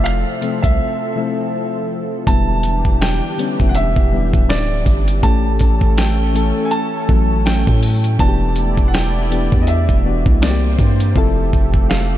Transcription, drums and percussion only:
0.06 finger snap, closed hi-hat
0.42 closed hi-hat
0.64 kick, closed hi-hat
2.27 kick, closed hi-hat
2.63 closed hi-hat
2.85 kick
3.02 snare, closed hi-hat
3.39 closed hi-hat
3.60 kick
3.75 closed hi-hat
3.96 kick
4.34 kick
4.50 snare, closed hi-hat
4.86 kick, closed hi-hat
5.08 closed hi-hat
5.23 kick, closed hi-hat
5.59 kick, closed hi-hat
5.81 kick
5.98 snare, closed hi-hat
6.36 closed hi-hat
6.71 closed hi-hat
7.09 kick
7.46 snare, closed hi-hat
7.67 kick
7.83 closed hi-hat, open hi-hat
8.04 closed hi-hat
8.19 kick, closed hi-hat
8.56 closed hi-hat
8.77 kick
8.94 snare, closed hi-hat
9.32 closed hi-hat
9.52 kick
9.67 closed hi-hat
9.89 kick
10.26 kick
10.42 snare, closed hi-hat
10.79 kick, closed hi-hat
11.00 closed hi-hat
11.16 kick
11.53 kick
11.74 kick
11.91 snare

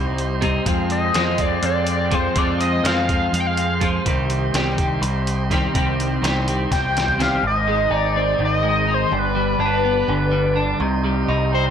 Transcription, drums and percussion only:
0.18 closed hi-hat
0.42 kick, closed hi-hat
0.66 kick, closed hi-hat
0.90 closed hi-hat
1.14 snare, closed hi-hat
1.38 kick, closed hi-hat
1.63 closed hi-hat
1.87 closed hi-hat
2.11 kick, closed hi-hat
2.36 kick, closed hi-hat
2.61 closed hi-hat
2.85 snare, closed hi-hat
3.09 kick, closed hi-hat
3.34 closed hi-hat
3.57 closed hi-hat
3.81 kick, closed hi-hat
4.06 kick, closed hi-hat
4.30 closed hi-hat
4.54 snare, closed hi-hat
4.78 kick, closed hi-hat
5.03 closed hi-hat
5.27 closed hi-hat
5.51 kick, snare, closed hi-hat
5.75 kick, closed hi-hat
6.00 closed hi-hat
6.24 snare, closed hi-hat
6.48 closed hi-hat
6.72 kick, snare, closed hi-hat
6.97 snare, closed hi-hat
7.08 mid tom
7.20 snare, closed hi-hat

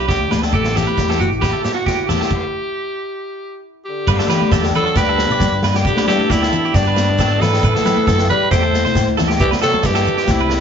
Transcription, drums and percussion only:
0.09 kick, snare, low agogo, shekere
0.31 snare, high conga, low conga, shekere
0.42 snare, high conga, low agogo
0.53 kick, shekere
0.64 snare
0.75 snare, low conga, low agogo, shekere
0.88 high conga, shekere
0.97 kick, snare, low conga, shekere
1.10 snare, low agogo
1.20 high conga, low conga, shekere
1.32 shekere
1.42 kick, snare, low agogo, shekere
1.64 snare, shekere
1.77 shekere
1.86 kick, snare, low agogo, shekere
2.09 snare, high conga, low conga, shekere
2.20 snare, high conga, low agogo
2.31 kick, crash
4.07 kick, crash, shekere
4.19 snare, high conga
4.29 snare, low agogo, shekere
4.42 high conga
4.51 kick, snare, shekere
4.63 snare, low agogo
4.74 low conga, shekere
4.87 shekere
4.95 kick, snare, low agogo, shekere
5.09 shekere
5.18 snare, shekere
5.30 high conga
5.39 kick, snare, low agogo, shekere
5.63 snare, low conga
5.74 snare, low agogo, shekere
5.85 kick, shekere
5.96 snare, high conga
6.07 snare, low agogo, shekere
6.19 high conga
6.30 kick, snare, shekere
6.42 snare, low agogo
6.52 low conga, shekere
6.65 shekere
6.74 kick, snare, low agogo, shekere
6.86 shekere
6.96 snare, shekere
7.09 high conga
7.18 kick, snare, low agogo, shekere
7.41 snare, low conga, shekere
7.53 snare, low agogo, shekere
7.63 kick, shekere
7.75 snare, high conga
7.85 snare, low agogo, shekere
7.97 high conga
8.07 kick, snare, shekere
8.18 snare, low agogo
8.30 low conga, shekere
8.41 shekere
8.51 kick, snare, low agogo, shekere
8.65 shekere
8.74 snare, shekere
8.85 snare, high conga
8.95 kick, snare, low agogo, shekere
9.18 snare, low conga, shekere
9.29 snare, low agogo, shekere
9.40 kick, shekere
9.52 snare, high conga, shekere
9.61 snare, low agogo, shekere
9.73 high conga, shekere
9.83 kick, snare, shekere
9.94 snare, low agogo, shekere
10.06 low conga, shekere
10.17 snare, shekere
10.27 kick, snare, high conga, low agogo, shekere
10.50 snare

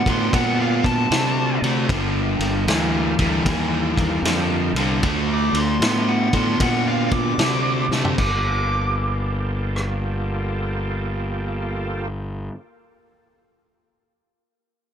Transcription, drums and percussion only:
0.06 kick, ride
0.33 kick, ride
0.84 kick, ride
1.12 snare, ride
1.64 ride
1.89 kick, ride
2.40 ride
2.68 snare, ride
3.19 kick, ride
3.46 kick, ride
3.98 kick, ride
4.25 snare, ride
4.76 ride
5.03 kick, ride
5.55 ride
5.82 snare, ride
6.33 kick, ride
6.60 kick, ride
7.11 kick, ride
7.39 snare, ride
7.92 snare
8.05 floor tom
8.18 kick, crash
9.76 cross-stick

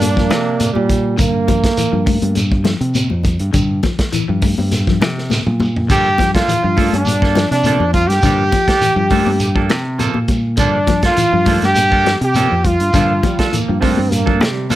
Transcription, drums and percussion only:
0.01 closed hi-hat, high conga, shekere
0.17 kick, snare
0.30 snare, closed hi-hat, high conga, shekere
0.60 closed hi-hat, high conga, shekere
0.75 high conga
0.89 kick, closed hi-hat, low conga, shekere
1.18 kick, closed hi-hat, low conga, shekere
1.48 kick, closed hi-hat, high conga, low conga, shekere
1.64 kick, snare, closed hi-hat
1.77 closed hi-hat, shekere
2.07 kick, open hi-hat, low conga, shekere
2.22 closed hi-hat, high conga
2.35 closed hi-hat, high conga, shekere
2.52 kick, high conga
2.65 snare, closed hi-hat, high conga, shekere
2.81 closed hi-hat
2.94 closed hi-hat, high conga, shekere
3.10 high conga
3.23 kick, closed hi-hat, low conga, shekere
3.39 closed hi-hat
3.54 kick, closed hi-hat, shekere
3.83 kick, snare, closed hi-hat, high conga, low conga, shekere
3.99 kick, snare, closed hi-hat
4.12 closed hi-hat, shekere
4.42 kick, open hi-hat, low conga, shekere
4.58 high conga
4.71 snare, closed hi-hat, high conga, shekere
4.87 kick, snare
5.02 snare, closed hi-hat, high conga, shekere
5.18 snare
5.30 snare, high conga, shekere
5.47 high tom
5.60 mid tom, high conga, low conga, shekere
5.76 floor tom
5.90 kick, closed hi-hat, splash, shekere
6.18 kick, snare, closed hi-hat, high conga, low conga, shekere
6.35 kick, snare, closed hi-hat
6.48 closed hi-hat, shekere
6.77 kick, open hi-hat, low conga, shekere
6.93 closed hi-hat, high conga
7.05 closed hi-hat, high conga, shekere
7.22 kick, snare, high conga
7.35 snare, closed hi-hat, high conga, shekere
7.52 snare, closed hi-hat
7.63 closed hi-hat, high conga, shekere
7.80 high conga
7.93 kick, closed hi-hat, low conga, shekere
8.10 snare, closed hi-hat
8.22 kick, snare, closed hi-hat, shekere
8.51 kick, snare, closed hi-hat, high conga, shekere
8.68 kick, snare, closed hi-hat
8.81 closed hi-hat, shekere
9.10 kick, open hi-hat, low conga, shekere
9.27 high conga
9.40 closed hi-hat, shekere
9.56 kick
9.69 snare, closed hi-hat, high conga, shekere
9.99 closed hi-hat, high conga, shekere
10.14 high conga
10.28 kick, closed hi-hat, high conga, low conga, shekere
10.57 kick, closed hi-hat, low conga, shekere
10.87 kick, snare, closed hi-hat, high conga, shekere
11.02 kick, snare, closed hi-hat
11.16 closed hi-hat, shekere
11.46 kick, open hi-hat, low conga, shekere
11.62 snare, closed hi-hat, high conga
11.75 closed hi-hat, high conga, shekere
11.92 kick
12.06 snare, closed hi-hat, high conga, shekere
12.21 closed hi-hat
12.34 closed hi-hat, high conga, shekere
12.64 kick, closed hi-hat, low conga, shekere
12.80 closed hi-hat
12.93 kick, snare, closed hi-hat, low conga, shekere
13.23 kick, closed hi-hat, high conga, shekere
13.39 kick, snare, closed hi-hat
13.53 closed hi-hat, shekere
13.82 kick, open hi-hat, low conga, shekere
13.97 high conga
14.11 closed hi-hat, high conga, shekere
14.26 kick, high conga
14.41 snare, closed hi-hat, high conga, shekere
14.70 closed hi-hat, high conga, shekere

